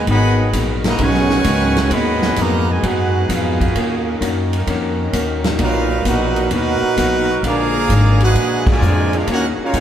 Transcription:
Already playing: trombone section D#3 G#3 B3 G#4
0.07 upright bass G#1, hollow-body jazz guitar G#2 F#3 B3 D#4, trombone section D#3 F#3 B3, trumpet section F#5 B5, kick, ride
0.11 trumpet section G#4 D#5
0.52 upright bass A#1, hollow-body jazz guitar G#2 F#3 B3 D#4, kick, hi-hat pedal, ride
0.84 trombone section A#3, trumpet section F#4 D#5 A#5, snare, ride
0.88 trumpet section B4
0.98 upright bass B1, hollow-body jazz guitar G#2 F#3 B3 D#4, trombone section D#3 F#3 C#4 G#4, kick, ride
1.03 trumpet section B4 F#5 G#5 C#6
1.14 snare
1.30 snare
1.44 upright bass C#2, hollow-body jazz guitar G#2 F#3 B3 D#4, kick, hi-hat pedal, ride
1.77 snare, ride
1.90 upright bass D#2, hollow-body jazz guitar G#2 F#3 B3 D#4, trombone section D#3 F#3 B3, trumpet section F#5 B5, kick, ride
1.94 trumpet section G#4 D#5
2.22 snare
2.36 upright bass F2, hollow-body jazz guitar G#2 F#3 B3 D#4, trombone section A#3, kick, hi-hat pedal, ride
2.41 trumpet section F#4 B4 D#5 A#5
2.68 trombone section B2 D#3 G#3, trumpet section F#4 B4 D#5 G#5
2.81 upright bass F#2, hollow-body jazz guitar G#2 F#3 B3 D#4, trombone section B3 D#4 F#4, kick, ride
2.86 trumpet section D#4 G#4 B4 F#5
3.27 upright bass F2, hollow-body jazz guitar G#2 F#3 B3 D#4, trombone section B3 F4 F#4, kick, hi-hat pedal, ride
3.32 trumpet section D#4 G#4 B4 F5
3.61 kick, ride
3.74 upright bass D#2, hollow-body jazz guitar D#3 A#3 C#4 F#4, trombone section D#3 A#3 C#4 D#4, kick, ride
4.21 upright bass F#2, hollow-body jazz guitar D#3 A#3 C#4 F#4, kick, hi-hat pedal, ride
4.53 ride
4.67 upright bass F2, hollow-body jazz guitar D#3 A#3 C#4 F#4, kick, ride
5.13 upright bass D#2, hollow-body jazz guitar D#3 A#3 C#4 F#4, kick, hi-hat pedal, ride
5.44 snare, ride
5.59 upright bass B1, trombone section A#2 F#3 F4, hollow-body jazz guitar B2 A#3 D#4 F#4, trumpet section D#4 A#4, kick, ride
5.63 trumpet section B4 F5
6.05 upright bass A#1, trombone section A#2 D#4 F#4, hollow-body jazz guitar B2 A#3 D#4 F#4, trumpet section D#4 A#4 B4 F#5, kick, hi-hat pedal, ride
6.36 ride
6.50 upright bass D#2, trombone section A#2 D#4 F#4, hollow-body jazz guitar B2 A#3 D#4 F#4, trumpet section D#4 B4, kick, ride
6.55 trumpet section A#4 F#5
6.82 muted upright bass stroke
6.96 upright bass B1, hollow-body jazz guitar B2 A#3 D#4 F#4, kick, hi-hat pedal, ride
7.42 upright bass A#1, hollow-body jazz guitar A#2 F3 G#3 D4, trombone section A#2 D3 F3 G#3 A#3 G#4, trumpet section D5, kick, ride
7.47 trumpet section G#4 F5 A#5
7.89 upright bass G#1, hollow-body jazz guitar A#2 F3 G#3 D4, kick, hi-hat pedal, ride
8.20 trombone section F#4, trumpet section G#4 B4 F#5, ride
8.25 trumpet section D#4
8.35 upright bass A#1, hollow-body jazz guitar A#2 F3 G#3 D4, kick, ride
8.67 trombone section F3 G#3, kick, crash
8.71 trombone section D3, trumpet section F4 A#4 D5 G#5
8.81 upright bass F2, hollow-body jazz guitar A#2 F3 G#3 D4, hi-hat pedal
9.13 trombone section G#3 D4 F4, trumpet section D4 G#4 A#4 F5, ride
9.27 upright bass D#2, trombone section C#3 F#3 A#3 C#4 D#4 F#4, hollow-body jazz guitar D#3 A#3 C#4 F#4, kick, ride
9.31 trumpet section D#4 A#4 C#5 F#5
9.58 trombone section C#4, muted upright bass stroke
9.62 trombone section A#3 F4, trumpet section D#4 A#4 C#5 F5
9.73 upright bass F#2, hollow-body jazz guitar D#3 A#3 C#4 F#4, kick, hi-hat pedal, ride

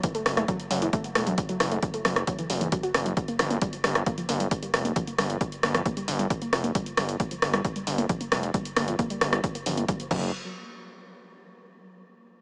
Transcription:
0.03 synth arpeggio sound E3, kick, closed hi-hat
0.15 synth arpeggio sound A3, closed hi-hat
0.26 analog synth bass F#1, cross-stick, open hi-hat
0.37 synth arpeggio sound A3, cross-stick, closed hi-hat
0.48 synth arpeggio sound F#3, kick, closed hi-hat
0.60 closed hi-hat
0.71 analog synth bass F#1, synth arpeggio sound F#3, open hi-hat
0.82 synth arpeggio sound E3, closed hi-hat
0.93 synth arpeggio sound A3, kick, closed hi-hat
1.04 closed hi-hat
1.15 analog synth bass E1, synth arpeggio sound A3, cross-stick, open hi-hat
1.27 synth arpeggio sound F#3, closed hi-hat
1.38 kick, closed hi-hat
1.49 synth arpeggio sound F#3, closed hi-hat
1.60 analog synth bass F#1, synth arpeggio sound E3, cross-stick, open hi-hat
1.71 synth arpeggio sound A3, closed hi-hat
1.82 kick, closed hi-hat
1.94 synth arpeggio sound A3, closed hi-hat
2.05 analog synth bass F#1, synth arpeggio sound F#3, cross-stick, open hi-hat
2.16 cross-stick, closed hi-hat
2.27 synth arpeggio sound F#3, kick, closed hi-hat
2.39 synth arpeggio sound E3, closed hi-hat
2.50 analog synth bass F#1, synth arpeggio sound F#3, open hi-hat
2.61 synth arpeggio sound E3, closed hi-hat
2.72 synth arpeggio sound F#3, kick, closed hi-hat
2.83 synth arpeggio sound F#4, closed hi-hat
2.94 analog synth bass F#1, cross-stick, open hi-hat
3.06 synth arpeggio sound F#3, closed hi-hat
3.17 kick, closed hi-hat
3.28 synth arpeggio sound A#3, closed hi-hat
3.39 analog synth bass G1, synth arpeggio sound F3, cross-stick, open hi-hat
3.51 synth arpeggio sound A#3, closed hi-hat
3.62 synth arpeggio sound G3, kick, closed hi-hat
3.73 closed hi-hat
3.84 analog synth bass G1, synth arpeggio sound G3, cross-stick, open hi-hat
3.95 cross-stick, closed hi-hat
4.06 synth arpeggio sound A#3, kick, closed hi-hat
4.18 synth arpeggio sound F3, closed hi-hat
4.29 analog synth bass G1, synth arpeggio sound A#3, open hi-hat
4.40 synth arpeggio sound G3, closed hi-hat
4.51 kick, closed hi-hat
4.62 synth arpeggio sound G3, closed hi-hat
4.74 analog synth bass F1, cross-stick, open hi-hat
4.85 synth arpeggio sound A#3, closed hi-hat
4.96 synth arpeggio sound F3, kick, closed hi-hat
5.07 synth arpeggio sound A#3, closed hi-hat
5.18 analog synth bass G1, synth arpeggio sound G3, cross-stick, open hi-hat
5.30 closed hi-hat
5.41 synth arpeggio sound G3, kick, closed hi-hat
5.52 closed hi-hat
5.63 analog synth bass G1, synth arpeggio sound A#3, cross-stick, open hi-hat
5.74 synth arpeggio sound F3, cross-stick, closed hi-hat
5.86 synth arpeggio sound A#3, kick, closed hi-hat
5.97 synth arpeggio sound G3, closed hi-hat
6.08 analog synth bass G1, open hi-hat
6.19 synth arpeggio sound G3, closed hi-hat
6.30 kick, closed hi-hat
6.42 synth arpeggio sound A#3, closed hi-hat
6.53 analog synth bass F1, synth arpeggio sound F3, cross-stick, open hi-hat
6.64 synth arpeggio sound A#3, closed hi-hat
6.75 synth arpeggio sound G3, kick, closed hi-hat
6.86 closed hi-hat
6.97 analog synth bass G1, synth arpeggio sound G3, cross-stick, open hi-hat
7.09 closed hi-hat
7.20 synth arpeggio sound A#3, kick, closed hi-hat
7.31 synth arpeggio sound F3, closed hi-hat
7.42 analog synth bass G1, synth arpeggio sound A#3, cross-stick, open hi-hat
7.53 synth arpeggio sound G3, cross-stick, closed hi-hat
7.65 kick, closed hi-hat
7.76 synth arpeggio sound G3, closed hi-hat
7.87 analog synth bass G1, open hi-hat
7.98 synth arpeggio sound A#3, closed hi-hat
8.09 synth arpeggio sound F3, kick, closed hi-hat
8.21 synth arpeggio sound A#3, closed hi-hat
8.32 analog synth bass F1, synth arpeggio sound G3, cross-stick, open hi-hat
8.43 closed hi-hat
8.54 synth arpeggio sound G3, kick, closed hi-hat
8.65 closed hi-hat
8.76 analog synth bass G1, synth arpeggio sound A#3, cross-stick, open hi-hat
8.88 synth arpeggio sound F3, closed hi-hat
8.99 synth arpeggio sound A#3, kick, closed hi-hat
9.10 synth arpeggio sound G3, closed hi-hat
9.21 analog synth bass G1, cross-stick, open hi-hat
9.33 synth arpeggio sound G3, cross-stick, closed hi-hat
9.44 kick, closed hi-hat
9.55 synth arpeggio sound A#3, closed hi-hat
9.66 analog synth bass G1, synth arpeggio sound F3, open hi-hat
9.77 synth arpeggio sound A#3, closed hi-hat
9.88 synth arpeggio sound G3, kick, closed hi-hat
10.00 closed hi-hat
10.11 analog synth bass F#1, synth arpeggio sound F#3, kick, crash

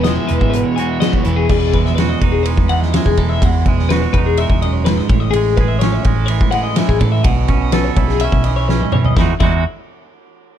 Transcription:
Already playing: picked electric bass E1, clean electric guitar E2 E3
0.04 overdriven electric guitar E3 G#3 B3, clean electric guitar D#5, snare, closed hi-hat
0.08 clean electric guitar G#3, overdriven electric guitar E4
0.17 clean electric guitar E5
0.27 picked electric bass E1, clean electric guitar E3 B4, closed hi-hat
0.39 picked electric bass G#1, clean electric guitar E5, kick
0.50 clean electric guitar B2 B4, closed hi-hat
0.63 clean electric guitar C#5
0.76 overdriven electric guitar B3 E4, clean electric guitar F#4 G#5, closed hi-hat
0.80 overdriven electric guitar G#3
0.89 clean electric guitar E5
1.00 overdriven electric guitar E3 G#3 B3 E4, clean electric guitar D#5, snare, closed hi-hat
1.13 clean electric guitar C#5, kick
1.24 picked electric bass E1, clean electric guitar E3 B4, overdriven electric guitar B3 E4, closed hi-hat
1.28 overdriven electric guitar G#3
1.36 clean electric guitar G#4
1.49 picked electric bass E1, clean electric guitar E2 G#4, kick, crash
1.73 picked electric bass E1, clean electric guitar G#3 B4, kick, ride
1.86 clean electric guitar E5, snare
1.95 clean electric guitar B4, snare, ride
2.00 clean electric guitar F#4
2.09 clean electric guitar D#5
2.19 picked electric bass E1, clean electric guitar B4, kick, ride
2.24 clean electric guitar D#4
2.32 clean electric guitar G#4
2.43 clean electric guitar G#3 B4, ride
2.57 picked electric bass E2, kick
2.69 clean electric guitar E3 F#5, ride
2.80 clean electric guitar D#5, snare
2.93 clean electric guitar G#3 E5, snare, ride
3.06 picked electric bass E1, clean electric guitar G#4, kick
3.17 picked electric bass E1, clean electric guitar E3 A4, kick, ride
3.29 clean electric guitar E5
3.42 clean electric guitar E2 F#5, picked electric bass E2, kick, ride
3.66 picked electric bass E1, clean electric guitar G#3 E5, kick, ride
3.78 clean electric guitar D#5, snare
3.89 clean electric guitar F#4 B4, snare, ride
4.02 clean electric guitar C#5
4.13 picked electric bass E1, clean electric guitar B4, kick, ride
4.17 clean electric guitar D#4
4.26 clean electric guitar G#4
4.37 clean electric guitar G#3 E5, ride
4.50 picked electric bass E1, kick
4.62 clean electric guitar F#2 D#5, ride
4.73 clean electric guitar C#5
4.85 clean electric guitar G#2 B4, snare, ride
4.97 clean electric guitar D#5, snare
5.08 picked electric bass A1, clean electric guitar A2 C#5, kick, ride
5.20 clean electric guitar D#5
5.31 picked electric bass A1, clean electric guitar G#4, ride
5.36 clean electric guitar G#3
5.57 picked electric bass A1, clean electric guitar B4, kick, ride
5.61 clean electric guitar G#4
5.68 clean electric guitar E5
5.79 clean electric guitar C#5, snare, ride
5.83 clean electric guitar C#4
5.92 clean electric guitar E5
6.03 picked electric bass A1, clean electric guitar G#3 C#5, kick, ride
6.16 clean electric guitar A4
6.26 clean electric guitar C#5, ride
6.30 clean electric guitar E3
6.41 picked electric bass A2, kick
6.51 clean electric guitar G#3 F#5, ride
6.63 clean electric guitar D#5
6.76 clean electric guitar E3 E5, snare, ride
6.88 picked electric bass A1, clean electric guitar G#4, kick
6.99 picked electric bass A1, clean electric guitar A2 A4, kick, ride
7.12 clean electric guitar E5
7.23 picked electric bass B1, clean electric guitar B2 F#5, kick, ride
7.48 picked electric bass B1, clean electric guitar C#4 E5, kick, ride
7.61 clean electric guitar D#5
7.72 clean electric guitar A4 B4, snare, ride
7.84 clean electric guitar C#5
7.96 picked electric bass B1, clean electric guitar E4 B4, kick, ride
8.08 clean electric guitar G#4, snare
8.20 clean electric guitar E5, ride
8.24 clean electric guitar C#4
8.32 picked electric bass B1, kick
8.44 clean electric guitar E3 D#5, ride
8.56 clean electric guitar C#5
8.68 clean electric guitar C#4 B4, snare
8.80 clean electric guitar D#5, mid tom
8.92 picked electric bass B2, clean electric guitar E3 C#5, mid tom
9.04 clean electric guitar D#5, floor tom
9.16 picked electric bass E2, clean electric guitar E2 E3 G#3 D#4 E4, kick, snare
9.21 clean electric guitar F#4
9.40 picked electric bass E2, clean electric guitar E2 E3 G#3 D#4 E4 F#4, kick, crash

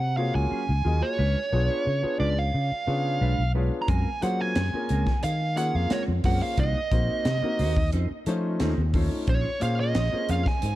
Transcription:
Already playing: fretless electric bass C3, lead electric guitar F#5
0.01 muted clean electric guitar stroke
0.17 grand piano A#3 F4 F#4 G#4 C#5, lead electric guitar F5
0.35 fretless electric bass C#2, lead electric guitar G#5, muted clean electric guitar stroke
0.50 clean electric guitar F#3 C#4 F4 G#4, muted fretless electric bass stroke
0.69 fretless electric bass C#2
0.84 fretless electric bass D#2, clean electric guitar F#3 C#4 F4 G#4, grand piano A#3 F4 F#4 G#4 D#5
1.02 lead electric guitar C#5, muted clean electric guitar stroke
1.18 fretless electric bass C#2, clean electric guitar G#3 D4 F4 B4
1.52 fretless electric bass B1, grand piano B3 D4 F4 G#4 C#5, muted clean electric guitar stroke
1.69 clean electric guitar D4 F4 B4
1.85 fretless electric bass C#3, muted clean electric guitar stroke
2.02 grand piano B3 D4 F4 G#4 B4, muted clean electric guitar stroke, muted fretless electric bass stroke
2.18 fretless electric bass C#2, clean electric guitar G#3 D4 F4 B4, lead electric guitar D5
2.36 lead electric guitar F5, muted clean electric guitar stroke
2.53 fretless electric bass C#3, grand piano G#4 C#5
2.70 muted clean electric guitar stroke, muted fretless electric bass stroke
2.87 fretless electric bass C#3, grand piano B3 D4 F4 G#4 C#5, muted clean electric guitar stroke
3.05 muted clean electric guitar stroke
3.21 fretless electric bass B1, clean electric guitar G#3 D4 F4 B4
3.38 fretless electric bass B1
3.54 clean electric guitar G#3 D4 F4 B4, grand piano B3 D4 F4 G#4 C#5
3.71 muted clean electric guitar stroke
3.82 lead electric guitar A#5
3.88 fretless electric bass F#2, clean electric guitar G#3 C4 F4 A#4, lead electric guitar G#5, kick, closed hi-hat
4.21 fretless electric bass F#3, grand piano A#3 C#4 F4 G#4 C5, lead electric guitar F#5, muted clean electric guitar stroke, closed hi-hat
4.39 clean electric guitar C4 F4 A#4, lead electric guitar G#5
4.55 fretless electric bass F#2, snare, closed hi-hat
4.73 grand piano A#3 C#4 F4 G#4 A#4, muted clean electric guitar stroke, muted fretless electric bass stroke
4.89 fretless electric bass C#2, clean electric guitar G#3 C4 F4 A#4, closed hi-hat
5.07 muted fretless electric bass stroke, muted clean electric guitar stroke, kick, snare
5.23 fretless electric bass D#3, grand piano G#4 D#5, lead electric guitar F5, closed hi-hat
5.41 muted clean electric guitar stroke
5.56 grand piano A#3 C#4 F4 G#4 C#5, lead electric guitar F#5, muted clean electric guitar stroke, closed hi-hat
5.75 fretless electric bass F2, lead electric guitar F5, muted clean electric guitar stroke
5.90 clean electric guitar G#3 C4 F4 A#4, lead electric guitar C#5, muted fretless electric bass stroke, snare, closed hi-hat
6.08 fretless electric bass F2
6.24 fretless electric bass F#2, clean electric guitar G#3 C4 F4 A#4, grand piano A#3 C#4 F4 G#4 C5, lead electric guitar F#5, kick, open hi-hat
6.41 lead electric guitar F5, muted clean electric guitar stroke
6.57 fretless electric bass C2, clean electric guitar A#3 D#4 F#4 C5, lead electric guitar D#5, kick, closed hi-hat
6.91 fretless electric bass A#1, grand piano A#3 C4 D#4 F#4 C5, muted clean electric guitar stroke, kick, closed hi-hat
7.09 clean electric guitar D#4 F#4 C5
7.25 fretless electric bass C3, snare, closed hi-hat
7.42 grand piano A#3 C4 D#4 F#4 A#4, muted fretless electric bass stroke, muted clean electric guitar stroke
7.59 fretless electric bass D#2, clean electric guitar A#3 D#4 F#4 C5, open hi-hat
7.76 muted clean electric guitar stroke, kick
7.93 fretless electric bass F2, clean electric guitar C#4 D#4 A4 C5, grand piano F4 C5, closed hi-hat
8.11 muted clean electric guitar stroke, muted fretless electric bass stroke
8.26 fretless electric bass F3, grand piano A3 C#4 D#4 F4 C5, muted clean electric guitar stroke, closed hi-hat
8.45 muted clean electric guitar stroke
8.60 fretless electric bass D#2, clean electric guitar C#4 D#4 A4 C5, snare, closed hi-hat
8.78 fretless electric bass D#2
8.94 grand piano A3 C#4 D#4 F4 C#5, clean electric guitar C#4 D#4 A4 C5, kick, open hi-hat
9.12 muted clean electric guitar stroke
9.27 fretless electric bass A#1, clean electric guitar C#4 F4 G#4 C5, lead electric guitar C#5, kick, closed hi-hat
9.60 fretless electric bass A#2, grand piano A#3 C#4 F4 G#4 C5, lead electric guitar F5, muted clean electric guitar stroke, closed hi-hat
9.80 clean electric guitar F4 G#4 C5, lead electric guitar D#5
9.95 fretless electric bass A#1, snare, closed hi-hat
10.12 grand piano A#3 C#4 F4 G#4 C5, muted clean electric guitar stroke, muted fretless electric bass stroke
10.29 fretless electric bass F2, clean electric guitar C#4 F4 G#4 C5, lead electric guitar F5, closed hi-hat
10.46 lead electric guitar G#5, muted fretless electric bass stroke, muted clean electric guitar stroke, kick, snare
10.62 fretless electric bass G#2, grand piano G#4 C5, closed hi-hat

